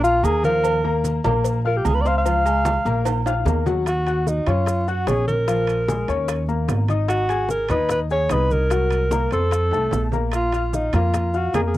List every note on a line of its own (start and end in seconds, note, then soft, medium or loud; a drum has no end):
0.00 0.19 A#1 loud
0.00 0.20 F4 medium
0.00 0.26 F4 loud
0.00 0.20 F5 medium
0.00 high conga soft
0.04 0.20 F6 medium
0.04 maracas medium
0.23 1.18 D#2 medium
0.23 0.40 A#3 medium
0.23 0.44 G#4 medium
0.23 0.40 A#4 medium
0.23 0.40 A#5 medium
0.23 cowbell medium
0.23 high conga medium
0.23 low agogo medium
0.23 maracas medium
0.44 0.77 F3 medium
0.44 0.77 F4 medium
0.44 1.01 A#4 loud
0.44 0.77 F5 medium
0.44 cowbell medium
0.44 high conga medium
0.44 maracas soft
0.64 cowbell medium
0.64 high conga soft
0.64 low agogo loud
0.64 maracas medium
0.84 1.17 A#3 medium
0.84 1.17 A#4 medium
0.84 1.18 A#5 medium
0.84 high conga soft
1.04 cowbell medium
1.04 high conga medium
1.04 low agogo medium
1.04 maracas medium
1.24 1.81 A#1 loud
1.24 1.57 A#3 medium
1.24 1.58 A#4 medium
1.24 1.58 A#5 medium
1.24 high conga loud
1.24 low conga medium
1.24 low agogo loud
1.24 maracas soft
1.44 cowbell loud
1.44 high conga soft
1.44 low agogo medium
1.44 maracas medium
1.65 1.98 F4 medium
1.65 1.78 A#4 medium
1.65 1.98 F5 medium
1.65 1.98 F6 medium
1.65 high conga soft
1.77 1.88 G4 medium
1.85 2.80 C#2 loud
1.85 1.96 G#4 medium
1.85 cowbell medium
1.85 high conga medium
1.85 low timbale medium
1.85 low agogo loud
1.85 maracas medium
1.94 2.03 B4 medium
2.01 2.21 C4 medium
2.01 2.09 D5 medium
2.05 2.22 C5 medium
2.05 2.16 F5 loud
2.05 2.22 C6 medium
2.05 cowbell medium
2.05 maracas soft
2.18 3.13 F5 loud
2.25 2.42 F3 medium
2.25 2.42 F4 medium
2.25 2.42 F5 medium
2.25 cowbell loud
2.25 high conga soft
2.25 low agogo medium
2.25 maracas medium
2.46 2.78 G#3 medium
2.46 2.78 G#4 medium
2.46 2.79 G#5 medium
2.46 high conga soft
2.46 low agogo loud
2.46 maracas medium
2.65 cowbell medium
2.65 high conga loud
2.65 low agogo medium
2.65 maracas medium
2.85 3.42 A#1 medium
2.85 3.19 A#3 medium
2.85 3.19 A#4 medium
2.85 3.19 A#5 medium
2.85 cowbell medium
2.85 high conga soft
2.85 maracas soft
3.05 cowbell loud
3.05 high conga soft
3.05 high timbale medium
3.05 low agogo loud
3.05 maracas medium
3.26 3.43 F4 medium
3.26 3.43 F5 medium
3.26 3.43 F6 medium
3.26 high conga soft
3.26 high timbale loud
3.26 maracas medium
3.45 4.40 D#2 medium
3.45 3.63 A#3 medium
3.45 3.63 A#4 medium
3.45 3.63 A#5 medium
3.45 cowbell medium
3.45 high bongo medium
3.45 high conga medium
3.45 low timbale medium
3.45 low agogo medium
3.45 maracas medium
3.66 3.83 F#3 medium
3.66 3.83 F#4 medium
3.66 3.83 F#5 medium
3.66 cowbell medium
3.66 low bongo medium
3.66 high conga medium
3.66 low timbale medium
3.66 maracas soft
3.86 4.30 F#4 medium
3.86 high bongo medium
3.86 high conga soft
3.86 high timbale medium
3.86 maracas medium
4.06 4.40 F#4 medium
4.06 4.40 F#5 medium
4.06 4.40 F#6 medium
4.06 high conga soft
4.06 high timbale medium
4.06 maracas soft
4.26 4.49 D#4 medium
4.26 high bongo medium
4.26 high conga medium
4.26 low timbale medium
4.26 maracas medium
4.46 5.04 F#2 medium
4.46 4.80 C#4 medium
4.46 4.90 F4 medium
4.46 4.80 C#5 medium
4.46 4.80 C#6 medium
4.46 high conga medium
4.46 low conga medium
4.46 high timbale medium
4.46 maracas soft
4.66 high bongo medium
4.66 high conga soft
4.66 high timbale medium
4.66 maracas medium
4.88 5.04 F#4 medium
4.88 5.09 F#4 medium
4.88 5.04 F#5 medium
4.88 5.04 F#6 medium
4.88 high conga soft
4.88 maracas soft
5.07 6.02 A#1 medium
5.07 5.41 C#4 medium
5.07 5.27 G#4 loud
5.07 5.41 C#5 medium
5.07 5.41 C#6 medium
5.07 high bongo medium
5.07 low bongo medium
5.07 high conga medium
5.07 high timbale medium
5.07 low timbale medium
5.07 maracas medium
5.28 6.45 A#4 loud
5.28 high conga medium
5.28 maracas soft
5.48 5.81 F3 medium
5.48 5.81 F4 medium
5.48 5.81 F5 medium
5.48 high bongo medium
5.48 high conga soft
5.48 high timbale medium
5.48 maracas medium
5.67 high bongo soft
5.67 high conga soft
5.67 high timbale medium
5.67 maracas soft
5.88 6.05 G#3 medium
5.88 6.05 G#4 medium
5.88 6.05 G#5 medium
5.88 high bongo medium
5.88 high conga loud
5.88 low timbale medium
5.88 maracas medium
6.08 6.65 D#2 medium
6.08 6.42 C#4 medium
6.08 6.42 C#5 medium
6.08 6.42 C#6 medium
6.08 high bongo soft
6.08 high timbale medium
6.08 maracas soft
6.28 high bongo medium
6.28 high conga soft
6.28 high timbale medium
6.28 maracas medium
6.48 6.82 A#3 medium
6.48 6.82 A#4 medium
6.48 6.82 A#5 medium
6.48 high conga soft
6.48 maracas soft
6.68 7.64 G#1 medium
6.68 high bongo medium
6.68 low bongo medium
6.68 high conga medium
6.68 high timbale medium
6.68 low timbale medium
6.68 maracas medium
6.88 7.22 D#4 medium
6.88 7.23 D#5 medium
6.88 7.23 D#6 medium
6.88 high bongo soft
6.88 high conga medium
6.88 high timbale medium
6.88 maracas soft
7.08 7.47 F#4 loud
7.08 high bongo medium
7.08 high conga soft
7.08 high timbale medium
7.08 maracas medium
7.29 7.63 G#4 medium
7.29 7.63 G#5 medium
7.29 7.63 G#6 medium
7.29 high conga soft
7.29 high timbale medium
7.29 maracas soft
7.49 7.69 A#4 medium
7.49 high bongo medium
7.49 high conga medium
7.49 low timbale medium
7.49 maracas medium
7.68 8.26 D#2 medium
7.68 8.03 D#4 medium
7.68 7.89 B4 medium
7.68 8.03 D#5 medium
7.68 8.04 D#6 medium
7.68 high conga medium
7.68 low conga medium
7.68 high timbale medium
7.68 maracas soft
7.89 8.00 B4 loud
7.89 high bongo medium
7.89 high conga soft
7.89 low conga medium
7.89 high timbale medium
7.89 maracas medium
8.10 8.27 G#4 medium
8.10 8.34 C#5 medium
8.10 8.27 G#5 medium
8.10 8.28 G#6 medium
8.10 high conga soft
8.10 maracas soft
8.29 9.26 C2 medium
8.29 8.64 D#4 medium
8.29 8.53 B4 loud
8.29 8.64 D#5 medium
8.29 8.64 D#6 medium
8.29 high bongo medium
8.29 low bongo medium
8.29 high conga medium
8.29 high timbale medium
8.29 low timbale medium
8.29 maracas medium
8.51 9.32 A#4 loud
8.51 high conga medium
8.51 maracas soft
8.70 9.04 F#3 medium
8.70 9.04 F#4 medium
8.70 9.04 F#5 medium
8.70 high bongo medium
8.70 high conga soft
8.70 high timbale medium
8.70 maracas medium
8.90 high bongo soft
8.90 high conga soft
8.90 high timbale medium
8.90 maracas soft
9.11 9.28 A#3 medium
9.11 9.28 A#4 medium
9.11 9.29 A#5 medium
9.11 high bongo medium
9.11 high conga medium
9.11 low timbale medium
9.11 maracas medium
9.31 9.70 F2 medium
9.31 9.65 C4 medium
9.31 10.09 A4 medium
9.31 9.65 C5 medium
9.31 9.65 C6 medium
9.31 high bongo soft
9.31 high timbale medium
9.31 maracas soft
9.51 high bongo medium
9.51 high conga soft
9.51 high timbale medium
9.51 maracas medium
9.71 9.91 C2 medium
9.71 10.06 A3 medium
9.71 10.06 A4 medium
9.71 10.06 A5 medium
9.71 high conga soft
9.71 high timbale medium
9.71 maracas soft
9.91 10.87 A#1 medium
9.91 high bongo medium
9.91 low bongo medium
9.91 high conga medium
9.91 low timbale medium
9.91 maracas medium
10.12 10.46 A#3 medium
10.12 10.46 A#4 medium
10.12 10.46 A#5 medium
10.12 high bongo soft
10.12 high conga medium
10.12 low timbale medium
10.12 maracas soft
10.32 10.76 F4 medium
10.32 high bongo medium
10.32 high conga soft
10.32 high timbale medium
10.32 maracas medium
10.52 10.86 F4 medium
10.52 10.86 F5 medium
10.52 10.87 F6 medium
10.52 high conga soft
10.52 high timbale medium
10.52 maracas soft
10.73 10.94 D#4 medium
10.73 high bongo medium
10.73 high conga medium
10.73 low timbale medium
10.73 maracas medium
10.93 11.50 F2 medium
10.93 11.27 A#3 medium
10.93 11.38 F4 medium
10.93 11.27 A#4 medium
10.93 11.27 A#5 medium
10.93 high conga medium
10.93 low conga medium
10.93 high timbale medium
10.93 maracas soft
11.14 high bongo medium
11.14 high conga soft
11.14 low conga medium
11.14 high timbale medium
11.14 maracas medium
11.34 11.50 F4 medium
11.34 11.55 F#4 medium
11.34 11.51 F5 medium
11.34 11.51 F6 medium
11.34 high conga soft
11.34 maracas soft
11.54 11.78 F2 medium
11.54 11.78 A#3 medium
11.54 11.61 G#4 medium
11.54 11.78 A#4 medium
11.54 11.78 A#5 medium
11.54 high bongo medium
11.54 low bongo medium
11.54 high conga medium
11.54 high timbale medium
11.54 low timbale medium
11.54 maracas medium
11.67 11.78 G#4 medium
11.74 high conga medium
11.74 maracas soft